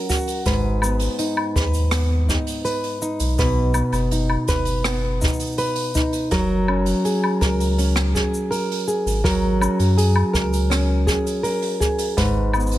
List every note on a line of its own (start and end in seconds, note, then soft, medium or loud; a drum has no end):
0.00 0.49 F#3 medium
0.00 0.53 C#4 medium
0.00 0.46 A#4 medium
0.09 1.19 F#4 medium
0.09 kick medium
0.09 shaker medium
0.12 shaker medium
0.14 shaker soft
0.16 shaker soft
0.21 shaker soft
0.23 shaker soft
0.26 open hi-hat medium
0.26 shaker soft
0.28 shaker medium
0.46 1.08 G#1 medium
0.46 3.38 G#2 medium
0.46 1.56 B4 medium
0.46 kick loud
0.46 open hi-hat medium
0.46 shaker soft
0.82 1.92 B3 medium
0.82 low woodblock medium
0.82 shaker medium
0.99 open hi-hat medium
0.99 shaker soft
1.19 2.28 D#4 medium
1.19 open hi-hat medium
1.19 shaker soft
1.37 low woodblock medium
1.56 2.36 D#2 medium
1.56 2.64 B4 medium
1.56 kick medium
1.56 open hi-hat soft
1.56 shaker medium
1.74 open hi-hat medium
1.74 shaker medium
1.91 3.75 B3 medium
1.91 cross-stick medium
1.91 open hi-hat medium
1.91 shaker soft
2.29 3.02 D#4 medium
2.29 kick medium
2.29 shaker medium
2.47 open hi-hat medium
2.47 shaker medium
2.65 3.39 B4 medium
2.65 open hi-hat medium
2.65 shaker soft
2.84 open hi-hat medium
3.02 4.12 D#4 medium
3.02 shaker medium
3.20 3.83 B1 medium
3.20 open hi-hat medium
3.20 shaker medium
3.38 6.31 B2 medium
3.38 4.47 B4 medium
3.38 kick loud
3.38 open hi-hat medium
3.38 shaker medium
3.74 4.84 B3 medium
3.74 low woodblock medium
3.74 shaker medium
3.92 4.37 F#1 medium
3.92 open hi-hat soft
3.92 low woodblock medium
3.92 shaker medium
4.11 5.20 D#4 medium
4.11 open hi-hat medium
4.11 shaker medium
4.30 low woodblock medium
4.47 5.29 F#1 medium
4.47 5.57 B4 medium
4.47 kick loud
4.47 open hi-hat soft
4.47 shaker medium
4.65 open hi-hat medium
4.65 shaker soft
4.84 6.39 B3 medium
4.84 cross-stick medium
4.84 open hi-hat medium
4.84 shaker soft
5.21 5.94 D#4 medium
5.21 kick medium
5.21 shaker medium
5.27 shaker medium
5.33 shaker soft
5.39 open hi-hat medium
5.39 shaker soft
5.39 shaker medium
5.46 shaker soft
5.52 shaker soft
5.58 6.31 B4 medium
5.58 open hi-hat medium
5.58 shaker soft
5.75 open hi-hat medium
5.95 6.39 D#4 medium
5.95 kick medium
5.95 shaker medium
6.13 open hi-hat soft
6.13 shaker medium
6.31 6.94 F#1 medium
6.31 9.24 F#3 medium
6.31 7.40 A#4 medium
6.31 kick loud
6.31 open hi-hat medium
6.31 shaker soft
6.68 7.77 C#4 medium
6.68 low woodblock medium
6.86 open hi-hat soft
6.86 shaker medium
7.05 8.14 G#4 medium
7.05 open hi-hat medium
7.05 shaker soft
7.24 low woodblock medium
7.41 8.22 C#2 medium
7.41 8.49 A#4 medium
7.41 kick medium
7.41 open hi-hat soft
7.41 shaker medium
7.60 open hi-hat soft
7.60 shaker medium
7.78 9.60 C#4 medium
7.78 open hi-hat medium
7.78 shaker soft
7.96 cross-stick medium
8.15 8.87 G#4 medium
8.15 kick medium
8.15 shaker medium
8.34 shaker medium
8.51 9.23 A#4 medium
8.51 open hi-hat medium
8.51 shaker soft
8.71 open hi-hat medium
8.88 9.97 G#4 medium
8.88 shaker medium
9.06 9.68 G#1 medium
9.06 open hi-hat medium
9.06 shaker medium
9.24 12.20 F#3 medium
9.24 10.32 A#4 medium
9.24 kick loud
9.24 open hi-hat medium
9.24 shaker soft
9.61 10.69 C#4 medium
9.61 low woodblock medium
9.61 shaker medium
9.79 10.23 F#2 medium
9.79 open hi-hat medium
9.79 shaker medium
9.98 11.06 G#4 medium
9.98 open hi-hat medium
9.98 shaker medium
10.16 low woodblock medium
10.33 11.15 C#2 medium
10.33 11.42 A#4 medium
10.33 kick medium
10.33 open hi-hat soft
10.33 shaker medium
10.53 open hi-hat medium
10.53 shaker medium
10.70 12.24 C#4 medium
10.70 cross-stick medium
10.70 open hi-hat medium
10.70 shaker soft
11.07 11.80 G#4 medium
11.07 kick medium
11.07 shaker medium
11.27 open hi-hat soft
11.27 shaker medium
11.43 12.17 A#4 medium
11.43 open hi-hat medium
11.43 shaker soft
11.62 open hi-hat medium
11.80 12.78 G#4 medium
11.80 kick medium
11.80 shaker medium
11.98 open hi-hat medium
11.98 shaker medium
12.17 12.78 G#1 medium
12.17 12.78 G#2 medium
12.17 12.78 B4 medium
12.17 kick loud
12.17 open hi-hat medium
12.17 shaker soft
12.53 12.78 B3 medium
12.53 low woodblock medium
12.53 shaker soft
12.60 shaker soft
12.66 shaker soft
12.71 open hi-hat soft
12.71 shaker medium